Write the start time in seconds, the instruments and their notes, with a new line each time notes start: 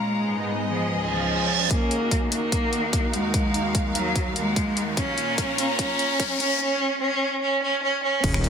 Already playing: cello G#3, string section A#4 F5 A#5
0.07 analog synth pad G#2 G#3 B3 D#4, string section G#4
0.21 string section D#5
0.69 cello F3
0.89 analog synth pad C#2 C#3 F4, string section C#4, reverse cymbal
1.09 cello F3
1.70 analog synth pad D#2 D#3 A#3 F#4, cello A#3, string section D#4, kick, closed hi-hat, riser
1.90 string section A#4, closed hi-hat
2.06 string section F5
2.11 kick, closed hi-hat
2.32 cello A#3, open hi-hat
2.52 kick, closed hi-hat
2.73 closed hi-hat
2.93 kick, closed hi-hat
3.13 cello G#3, closed hi-hat
3.34 kick, closed hi-hat
3.54 closed hi-hat
3.75 kick, closed hi-hat
3.95 cello F#3, open hi-hat
4.16 kick, closed hi-hat
4.36 cello G#3, closed hi-hat
4.56 kick, closed hi-hat
4.77 closed hi-hat
4.97 analog synth pad A#2 C#4 F4, cello C#4, kick, closed hi-hat
5.18 closed hi-hat
5.33 string section A#5
5.38 kick, closed hi-hat
5.58 cello C#4, open hi-hat
5.79 cello C#4, kick, closed hi-hat
5.99 closed hi-hat
6.20 kick, closed hi-hat
6.40 cello C#4, closed hi-hat
6.60 cello C#4
7.01 cello C#4
7.42 cello C#4
7.62 cello C#4
7.83 cello C#4
8.03 cello C#4
8.24 wobble bass D#1, analog synth pad D#3 D#4 F#4 A#4, kick, closed hi-hat, crash, sub drop
8.34 finger snap
8.44 closed hi-hat